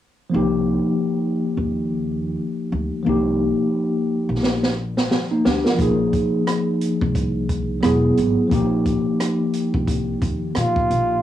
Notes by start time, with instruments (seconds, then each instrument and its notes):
0.30 tine electric piano F3 A#3 D#4
0.34 upright bass C2, tine electric piano G4
1.57 upright bass D#2
2.72 upright bass D2
3.03 upright bass C2, tine electric piano F3 A#3
3.07 tine electric piano D#4 G4
4.29 upright bass A#1
4.43 snare
4.63 snare
4.97 snare
5.11 snare
5.31 tine electric piano A#3 D#4
5.45 upright bass D2, tine electric piano D4 G4, snare
5.64 tine electric piano F4 A#4, snare
5.75 tine electric piano F3 A#3, kick, closed hi-hat
5.79 upright bass A#1, tine electric piano D#4 G#4
6.13 kick, closed hi-hat
6.47 cross-stick, closed hi-hat
6.81 closed hi-hat
7.01 upright bass C2, kick
7.15 kick, closed hi-hat
7.49 kick, closed hi-hat
7.81 upright bass E1, tine electric piano F#3 B3 E4 G#4, cross-stick, closed hi-hat
8.17 upright bass G#1, closed hi-hat
8.47 tine electric piano F3 A#3, kick, closed hi-hat
8.52 upright bass A#1, tine electric piano D#4 G4
8.85 kick, closed hi-hat
9.20 cross-stick, closed hi-hat
9.53 closed hi-hat
9.74 upright bass C2, kick
9.87 kick, closed hi-hat
10.22 upright bass D#2, kick, closed hi-hat
10.55 upright bass A#2, flugelhorn F4, cross-stick, closed hi-hat
10.76 kick
10.90 upright bass A#1, closed hi-hat